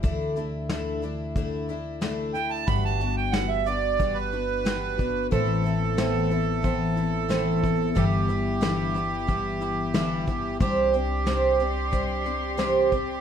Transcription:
<<
  \new Staff \with { instrumentName = "Accordion" } { \time 4/4 \key g \major \tempo 4 = 91 r2. r8 g''16 a''16 | b''16 a''8 g''16 fis''16 e''16 d''8. b'4.~ b'16 | a'1 | g'1 |
g'1 | }
  \new Staff \with { instrumentName = "String section" } { \time 4/4 \key g \major r1 | r1 | r1 | r1 |
<g' d'' c'''>1 | }
  \new Staff \with { instrumentName = "Twelve-string acoustic guitar" } { \time 4/4 \key g \major <d a d' e'>8 <a d' e'>8 <d a d' e'>8 <a d' e'>8 <d a d' e'>8 <a d' e'>8 <d a d' e'>8 <a d' e'>8 | <g b d' fis'>8 <b d' fis'>8 <g b d' fis'>8 <b d' fis'>8 <g b d' fis'>8 <b d' fis'>8 <g b d' fis'>8 <b d' fis'>8 | <a, e b c' e'>8 <b c' e'>8 <a, e b c' e'>8 <b c' e'>8 <e b c' e'>8 <b c' e'>8 <a, e b c' e'>8 <b c' e'>8 | <g, d e g b e'>8 <e g b e'>8 <g, d e g b e'>8 <e g b e'>8 <e g b e'>8 <e g b e'>8 <g, d e g b e'>8 <e g b e'>8 |
<c g c' d' g'>8 <c' d' g'>8 <c g c' d' g'>8 <c' d' g'>8 <g c' d' g'>8 <c' d' g'>8 <c g c' d' g'>8 <c' d' g'>8 | }
  \new Staff \with { instrumentName = "Upright bass" } { \clef bass \time 4/4 \key g \major d,1 | g,,1 | a,,1 | g,,1 |
c,1 | }
  \new DrumStaff \with { instrumentName = "Drums" } \drummode { \time 4/4 <hh bd>8 hh8 <hh sn>8 hh8 <hh bd>8 hh8 <hh sn>8 hh8 | <hh bd>8 hh8 <hh sn>8 hh8 <hh bd>8 hh8 <hh sn>8 <hh bd>8 | <hh bd>8 hh8 <hh sn>8 hh8 <hh bd>8 hh8 <hh sn>8 <hh bd>8 | <hh bd>8 hh8 <hh sn>8 hh8 <hh bd>8 hh8 <hh sn>8 <hh bd>8 |
<hh bd>8 hh8 <hh sn>8 hh8 <hh bd>8 hh8 <hh sn>8 <hh bd>8 | }
>>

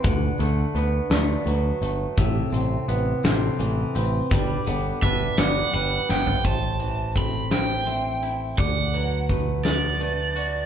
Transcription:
<<
  \new Staff \with { instrumentName = "Overdriven electric guitar" } { \time 6/8 \key a \dorian \tempo 4. = 56 r2. | r2. | r4 e''8 fis''8 fis''8 g''8 | a''4 b''8 g''4. |
fis''4 r8 d''4. | }
  \new Staff \with { instrumentName = "Clean electric guitar" } { \time 6/8 \key a \dorian b'8 a'8 b'8 d''8 b'4 | a'4 b'8 a'8 a'8 b'8~ | b'8 a'8 b'8 d''8 b'4 | c''4 a'8 c''8 e''4 |
d''8 b'8 b'4 b'8 d''8 | }
  \new Staff \with { instrumentName = "Pedal steel guitar" } { \time 6/8 \key a \dorian << { <d' fis''>2. | <c e''>2. | <d' d''>2. | r2. |
r2. | } \\ { <a' b'>2.~ | <a' b'>2. | <g' b'>2. | r2. |
r2. | } >> }
  \new Staff \with { instrumentName = "Clean electric guitar" } { \time 6/8 \key a \dorian d8 a8 b8 a8 fis8 a8 | a,8 c'8 b8 c'8 e8 c'8 | g8 b8 d'8 b8 g8 b8 | a,8 e8 c'4 c'8 e'8 |
d8 fis8 a8 b8 a8 fis'8 | }
  \new Staff \with { instrumentName = "Picked electric bass" } { \clef bass \time 6/8 \key a \dorian d,8 d,8 d,8 d,8 d,8 g,,8 | a,,8 a,,8 a,,8 a,,8 a,,8 a,,8 | g,,8 g,,8 g,,8 g,,8 g,,8 g,,8 | a,,2. |
d,2. | }
  \new DrumStaff \with { instrumentName = "Drums" } \drummode { \time 6/8 <hh bd>8 hh8 hh8 <hh sn>8 hh8 hh8 | <hh bd>8 hh8 hh8 <hh sn>8 hh8 hh8 | <hh bd>8 hh8 <hh bd>8 <hh sn>8 hh8 sn16 tomfh16 | <hh bd>8 hh8 <hh bd>8 <hh sn>8 hh8 hh8 |
<hh bd>8 hh8 <hh bd>8 <hh sn>8 hh8 hh8 | }
>>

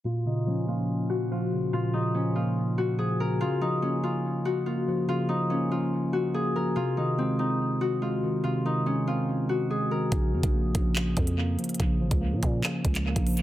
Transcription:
<<
  \new Staff \with { instrumentName = "Harp" } { \time 4/4 \key bes \minor \tempo 4 = 143 f'8 ees'8 des'8 f'4 ges'8 f'4 | f'8 ees'8 des'8 f'4 ges'8 aes'8 bes'8 | f'8 ees'8 des'8 f'4 ges'8 f'4 | f'8 ees'8 des'8 f'4 ges'8 aes'8 bes'8 |
f'8 ees'8 c'8 ees'4 ges'8 f'4 | f'8 ees'8 des'8 f'4 ges'8 aes'8 bes'8 | r1 | r1 | }
  \new Staff \with { instrumentName = "Ambient pad" } { \clef bass \time 4/4 \key bes \minor <bes, f des'>1~ | <bes, f des'>1 | r1 | r1 |
r1 | r1 | r1 | r1 | }
  \new Staff \with { instrumentName = "Tine electric piano" } { \clef bass \time 4/4 \key bes \minor bes,8 des8 f8 bes4. f8 des8 | bes,8 des8 f8 bes4. f8 des8 | des8 f8 bes8 des'4. bes8 f8 | des8 f8 bes8 des'4. bes8 f8 |
c8 ees8 aes8 c'4. aes8 ees8 | c8 ees8 aes8 c'4. aes8 ees8 | r8 f8 bes8 des'4. bes8 f8 | des8 f8 bes8 des'4. bes8 f8 | }
  \new Staff \with { instrumentName = "808-style bass" } { \clef bass \time 4/4 \key bes \minor r1 | r1 | r1 | r1 |
r1 | r1 | bes,,8 f,16 bes,,8. bes,,4 f,4 r8 | bes,,8 aes,,16 des,8 bes,16 bes,8 r8 des,8. bes,,8. | }
  \new DrumStaff \with { instrumentName = "Drums" } \drummode { \time 4/4 r4 r4 r4 r4 | r4 r4 r4 r4 | r4 r4 r4 r4 | r4 r4 r4 r4 |
r4 r4 r4 r4 | r4 r4 r4 r4 | <hh bd>8. <hh bd>16 r8 <hh bd>8 hc8 <hh bd>16 hh16 r8 hh32 hh32 hh32 hh32 | <hh bd>8. <hh bd>16 r8 <hh bd>8 hc8 <hh bd>16 <hc hh>16 r16 <hh bd>16 <hh hho>16 hh16 | }
>>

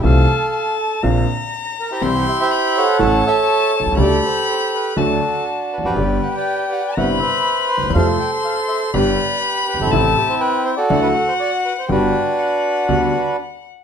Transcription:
<<
  \new Staff \with { instrumentName = "Violin" } { \time 4/4 \key g \major \tempo 4 = 122 a''4 a''4 bes''2 | c'''4 b''4 a''2 | b''2 a''4. r8 | g''2 b''2 |
c'''2 b''2 | a''4 g''4 fis''2 | g''4 fis''2~ fis''8 r8 | }
  \new Staff \with { instrumentName = "Bandoneon" } { \time 4/4 \key g \major << { f''4. r2 bes'16 c''16~ | c''8 e''16 g''8. fis''4 e''4 cis''8 | d''8 c''8 c''8 b'8 a'4 r8 b'16 d''16~ | d''8 fis''16 g''8. fis''8 fis''8 e''4 c'''8 |
f''8 g''8 f''8 e''8 d''4 r8 b'16 a'16~ | a'8 g'16 c''16 b'8 c''16 d''8 b'16 a'16 c''16 d''8 b'16 c''16 | b'2. r4 | } \\ { a'2 r4. r16 <e' g'>16~ | <e' g'>8. <c'' e''>8. <a' cis''>4 <a' cis''>4. | <g' a'>2 <d' fis'>4.~ <d' fis'>16 <g' b'>16~ | <g' b'>8. <b' d''>4~ <b' d''>16 <b' c''>8 <b' c''>4. |
<a' c''>2 <g' b'>4.~ <g' b'>16 <c' e'>16~ | <c' e'>4.~ <c' e'>16 <fis' a'>2 r16 | <d' fis'>2. r4 | } >> }
  \new Staff \with { instrumentName = "Upright piano" } { \clef bass \time 4/4 \key g \major <c, c e a c' f'>8 r4. <bes,, bes, d bes c' f'>8 r4. | <c, c e g c' g'>8 r4. <a,, a, e a cis' a'>8 r4 r32 b,,32 c,32 cis,32 | <d, d g a g'>8 r4. <d, d fis a fis'>8 r4 r32 e,32 f,32 fis,32 | <g,, g, d g b g'>8 r4. <g,, g, c g b e'>8 r4 r32 d,32 ees,32 e,32 |
<f, c f g a f'>8 r4. <g,, g, d g b g'>8 r4 r32 fis,,32 g,,32 aes,,32 | <a,, a, c e a e'>8 r4. <d, d fis a e'>8 r4. | <g,, g, d g b fis'>8 r4. <d, d g b fis'>8 r4. | }
  \new Staff \with { instrumentName = "Upright bass" } { \clef bass \time 4/4 \key g \major c,16. r4. r32 bes,,16. r4. r32 | c,16. r4. r32 a,,16. r4 r16 b,,32 c,32 cis,32 | d,16. r4. r32 d,16. r4 r16 e,,32 f,,32 fis,,32 | g,,16. r4. r32 g,,16. r4 r16 d,32 ees,32 e,32 |
f,16. r4. r32 g,,16. r4 r16 fis,,32 g,,32 aes,,32 | a,,16. r4. r32 d,16. r4. r32 | g,,16. r4. r32 d,16. r4. r32 | }
>>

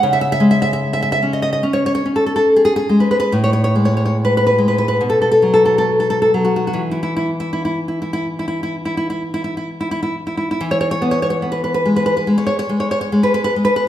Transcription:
\new Staff \with { instrumentName = "Nylon-string guitar" } { \time 4/4 \key e \major \tempo 4 = 71 << { r32 e''32 e''32 e''32 r32 e''32 e''32 e''32 r32 e''32 e''32 e''32 r32 dis''32 dis''32 dis''32 r32 cis''32 cis''32 cis''32 r32 a'32 a'32 a'32 r32 gis'32 gis'32 gis'32 r32 b'32 b'32 b'32 | r32 cis''32 cis''32 cis''32 r32 cis''32 cis''32 cis''32 r32 b'32 b'32 b'32 r32 b'32 b'32 b'32 r32 a'32 a'32 a'32 r32 a'32 a'32 a'32 r32 a'32 a'32 a'32 r32 fis'32 fis'32 fis'32 | r32 e'32 e'32 e'32 r32 e'32 e'32 e'32 r32 e'32 e'32 e'32 r32 e'32 e'32 e'32 r32 e'32 e'32 e'32 r32 e'32 e'32 e'32 r32 e'32 e'32 e'32 r32 e'32 e'32 e'32 | r32 cis''32 cis''32 cis''32 r32 cis''32 cis''32 cis''32 r32 b'32 b'32 b'32 r32 b'32 b'32 b'32 r32 cis''32 cis''32 cis''32 r32 cis''32 cis''32 cis''32 r32 b'32 b'32 b'32 r32 b'32 b'32 r32 | } \\ { cis8 gis4 cis'8 cis'8 cis'4 gis8 | a,8 gis4 gis8 b,8 fis4 fis8 | e1 | e8 b8 b8 gis8 gis8 gis8 gis8 gis8 | } >> }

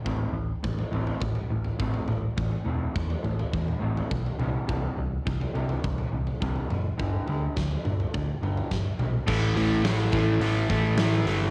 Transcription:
<<
  \new Staff \with { instrumentName = "Overdriven electric guitar" } { \clef bass \time 4/4 \key a \minor \tempo 4 = 104 r1 | r1 | r1 | r1 |
<a, e a>8 <a, e a>8 <a, e a>8 <a, e a>8 <a, e a>8 <a, e a>8 <a, e a>8 <a, e a>8 | }
  \new Staff \with { instrumentName = "Clean electric guitar" } { \clef bass \time 4/4 \key a \minor <a, e c'>8 <a, e>8 <a, e>8 <a, e c'>8 <a, e>8 <a, e>8 <a, e c'>8 <a, e>8 | <a, e>8 <a, e c'>8 <a, e>8 <a, e>8 <a, e>8 <a, e c'>8 <a, e>8 <c e g>8 | <c e g>8 <c e>8 <c e>8 <c e g>8 <c e>8 <c e>8 <c e g>8 <c e>8 | <g, d g>8 <g, d g>8 <g, d>8 <g, d>8 <g, d>8 <g, d g>8 <g, d>8 <g, d>8 |
r1 | }
  \new Staff \with { instrumentName = "Picked electric bass" } { \clef bass \time 4/4 \key a \minor a,,8 a,,8 a,,8 a,,8 a,,8 a,,8 a,,8 a,,8 | a,,8 e,,8 e,8 a,,8 e,8 a,,8 b,,8 c,8 | c,8 c,8 c,8 c,8 c,8 c,8 c,8 fis,,8 | g,,8 d,8 d,8 g,,8 d,8 g,,8 g,,8 b,,8 |
a,,8 a,,8 a,,8 a,,8 a,,8 a,,8 a,,8 g,,8 | }
  \new DrumStaff \with { instrumentName = "Drums" } \drummode { \time 4/4 <bd tomfh>4 bd16 tomfh16 tomfh16 tomfh16 <bd tomfh>16 toml8 tomfh16 bd16 tomfh16 <tomfh toml>8 | <bd tomfh>4 bd16 tomfh16 tomfh16 tomfh16 <bd tomfh>16 toml8 tomfh16 bd16 tomfh16 <tomfh toml>8 | <bd tomfh>4 bd16 tomfh16 tomfh16 tomfh16 <bd tomfh>16 toml8 tomfh16 bd16 tomfh16 <tomfh toml>8 | <bd tomfh>8 tomfh8 <bd sn>16 tomfh16 <tomfh toml>16 tomfh16 <bd tomfh>8 tomfh16 tomfh16 <bd sn toml>8 <tomfh toml>8 |
<cymc bd>8 hho8 <hho sn>8 <hho bd>8 hho8 <hho bd>8 <hho sn>8 hho8 | }
>>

